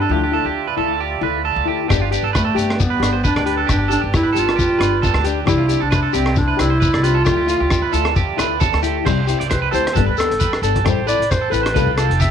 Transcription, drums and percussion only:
1.90 kick, cross-stick, shekere
2.12 closed hi-hat, shekere
2.35 kick, cross-stick, shekere
2.58 closed hi-hat, shekere
2.70 cross-stick
2.80 kick, shekere
3.03 cross-stick, closed hi-hat, shekere
3.24 kick, shekere
3.36 cross-stick
3.47 closed hi-hat
3.69 kick, cross-stick, shekere
3.91 closed hi-hat, shekere
4.14 kick, cross-stick, shekere
4.36 closed hi-hat, shekere
4.49 cross-stick
4.59 kick, shekere
4.81 cross-stick, closed hi-hat, shekere
5.03 kick, shekere
5.14 cross-stick
5.25 closed hi-hat, shekere
5.47 kick, cross-stick, shekere
5.69 closed hi-hat, shekere
5.92 kick, cross-stick, shekere
6.14 closed hi-hat, shekere
6.26 cross-stick
6.36 kick, shekere
6.59 cross-stick, closed hi-hat, shekere
6.82 kick, shekere
6.94 cross-stick
7.04 closed hi-hat, shekere
7.26 kick, cross-stick, shekere
7.49 closed hi-hat, shekere
7.70 kick, cross-stick, shekere
7.93 closed hi-hat, shekere
8.05 cross-stick
8.16 kick, shekere
8.39 cross-stick, closed hi-hat, shekere
8.61 kick, shekere
8.74 cross-stick
8.83 closed hi-hat, shekere
9.06 kick, cross-stick, crash, shekere
9.28 closed hi-hat, shekere
9.41 closed hi-hat
9.51 kick, cross-stick, closed hi-hat, shekere
9.73 closed hi-hat, shekere
9.87 cross-stick, closed hi-hat
9.95 kick, closed hi-hat, shekere
10.17 cross-stick, closed hi-hat, shekere
10.31 closed hi-hat
10.40 kick, closed hi-hat, shekere
10.53 cross-stick
10.63 closed hi-hat, shekere
10.76 kick, closed hi-hat
10.86 kick, cross-stick, closed hi-hat, shekere
11.08 closed hi-hat, shekere
11.22 closed hi-hat
11.31 kick, cross-stick, closed hi-hat, shekere
11.53 closed hi-hat, shekere
11.66 cross-stick, closed hi-hat
11.76 kick, closed hi-hat, shekere
11.98 cross-stick, closed hi-hat, shekere
12.11 closed hi-hat
12.20 kick, closed hi-hat, shekere

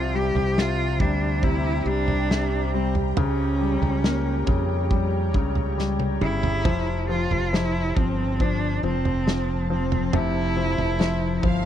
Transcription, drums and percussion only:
0.36 floor tom
0.58 snare
1.00 kick, floor tom
1.43 kick
2.08 floor tom
2.31 snare
2.95 floor tom
3.17 floor tom
3.82 floor tom
4.04 snare
4.47 kick, floor tom
4.91 kick
5.34 kick
5.55 floor tom
5.79 snare
5.99 high tom
6.21 mid tom
6.43 floor tom
6.65 kick, floor tom
7.31 floor tom
7.54 snare
7.97 kick, floor tom
8.40 kick
9.05 floor tom
9.28 snare
9.92 floor tom
10.13 floor tom
10.78 floor tom
11.01 snare
11.43 kick, floor tom

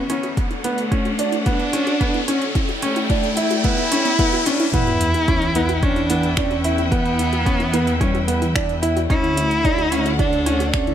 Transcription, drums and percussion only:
0.10 closed hi-hat
0.23 closed hi-hat
0.37 kick, closed hi-hat
0.51 closed hi-hat
0.64 closed hi-hat
0.78 closed hi-hat
0.92 kick, closed hi-hat
1.05 closed hi-hat
1.19 closed hi-hat
1.32 closed hi-hat
1.46 kick, closed hi-hat
1.60 closed hi-hat
1.73 closed hi-hat
1.87 closed hi-hat
2.01 kick, closed hi-hat
2.14 closed hi-hat
2.28 closed hi-hat
2.42 closed hi-hat
2.55 kick, closed hi-hat
2.69 closed hi-hat
2.82 closed hi-hat
2.96 closed hi-hat
3.10 kick, closed hi-hat
3.23 closed hi-hat
3.37 closed hi-hat
3.50 closed hi-hat
3.64 kick, closed hi-hat
3.78 closed hi-hat
3.92 closed hi-hat
4.05 closed hi-hat
4.19 kick, closed hi-hat
4.33 closed hi-hat
4.46 closed hi-hat
4.60 closed hi-hat
4.74 kick, closed hi-hat
4.87 closed hi-hat
5.01 closed hi-hat
5.14 closed hi-hat
5.28 kick, closed hi-hat
5.42 closed hi-hat
5.55 closed hi-hat
5.69 closed hi-hat
5.83 kick, closed hi-hat
5.96 closed hi-hat
6.10 closed hi-hat
6.23 closed hi-hat
6.37 finger snap, kick, closed hi-hat
6.51 closed hi-hat
6.64 closed hi-hat
6.78 closed hi-hat
6.92 kick, closed hi-hat
7.06 closed hi-hat
7.19 closed hi-hat
7.33 closed hi-hat
7.46 kick, closed hi-hat
7.60 closed hi-hat
7.74 closed hi-hat
7.87 closed hi-hat
8.01 kick, closed hi-hat
8.15 closed hi-hat
8.28 closed hi-hat
8.42 closed hi-hat
8.55 finger snap, kick, closed hi-hat
8.69 closed hi-hat
8.83 closed hi-hat
8.97 closed hi-hat
9.10 kick, closed hi-hat
9.24 closed hi-hat
9.37 closed hi-hat
9.51 closed hi-hat
9.65 kick, closed hi-hat
9.78 closed hi-hat
9.92 closed hi-hat
10.06 closed hi-hat
10.19 kick, closed hi-hat
10.33 closed hi-hat
10.46 closed hi-hat
10.60 closed hi-hat
10.74 finger snap, kick, closed hi-hat
10.87 closed hi-hat

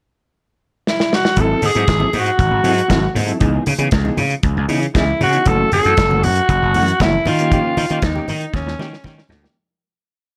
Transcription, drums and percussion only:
0.87 snare
1.00 snare
1.13 snare
1.25 snare
1.36 kick, closed hi-hat, muted conga, low conga
1.62 open hi-hat, muted conga, high conga
1.75 closed hi-hat
1.88 kick, snare, closed hi-hat, muted conga
2.00 high conga
2.13 open hi-hat, low conga
2.26 closed hi-hat
2.39 kick, closed hi-hat, muted conga
2.64 open hi-hat, muted conga
2.78 closed hi-hat
2.90 kick, snare, closed hi-hat, muted conga, high conga
3.16 open hi-hat, high conga, low conga
3.28 closed hi-hat
3.41 kick, closed hi-hat, muted conga, low conga
3.66 open hi-hat, muted conga, high conga
3.78 closed hi-hat
3.91 kick, snare, closed hi-hat
4.05 high conga
4.17 open hi-hat, muted conga, low conga
4.30 closed hi-hat
4.43 kick, closed hi-hat
4.69 open hi-hat, muted conga
4.83 closed hi-hat
4.95 kick, snare, closed hi-hat, muted conga, high conga
5.21 open hi-hat, muted conga, high conga, low conga
5.33 closed hi-hat
5.46 kick, closed hi-hat, muted conga, low conga
5.72 open hi-hat, muted conga, high conga
5.85 closed hi-hat
5.97 kick, snare, closed hi-hat
6.11 high conga
6.23 open hi-hat, low conga
6.35 closed hi-hat
6.49 kick, closed hi-hat
6.74 open hi-hat, muted conga
6.88 closed hi-hat
7.00 kick, snare, closed hi-hat, muted conga, high conga
7.26 open hi-hat, muted conga, high conga, low conga
7.39 closed hi-hat
7.52 kick, closed hi-hat, muted conga, low conga
7.77 open hi-hat, muted conga, high conga
7.90 closed hi-hat
8.02 kick, snare, closed hi-hat, muted conga
8.16 high conga
8.28 open hi-hat, muted conga, low conga
8.41 closed hi-hat
8.54 kick, snare, muted conga
8.68 snare
8.79 snare, muted conga
8.93 snare
9.04 kick, snare, muted conga, high conga
9.18 snare
9.29 snare, muted conga, high conga, low conga
9.44 snare

